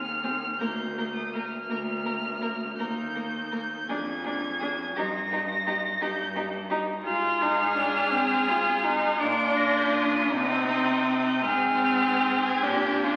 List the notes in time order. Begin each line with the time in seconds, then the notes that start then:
Already playing: D#2 F6
0.23 C4 G#4
0.59 D2 A#3 A#4 G6
0.97 A#3 A#4
1.16 D#6
1.33 A#3 A#4 F6
1.69 D2 A#3 A#4
2.05 A#3 A#4
2.41 A#3 A#4
2.78 D#2 A#3 A#4 G6
3.15 A#3 A#4
3.52 A#3 A#4
3.87 F2 D4 G#4 G#6
4.24 D4 G#4
4.60 D4 G#4
4.96 G2 D#4 G4 A#6
5.32 D#4 G4
5.67 D#4 G4
6.01 G2 D#4 G4 G6
6.36 D#4 G4
6.70 D#4 G4
7.05 G#2 F4 G#4 F6
7.42 D#4
7.77 D4
8.12 C4
8.48 F4
8.84 D#4
9.19 A#2 D4 F4 D7
9.57 A#6
9.78 G6
9.94 D#6
10.31 C3 C4 D#4
11.27 G6
11.43 G#2 C4 G#4 F6
12.45 G#6
12.62 A#2 D4 G4 G6
12.71 G#6
12.80 G6
12.89 G#6
12.97 G6
13.04 F4 G#6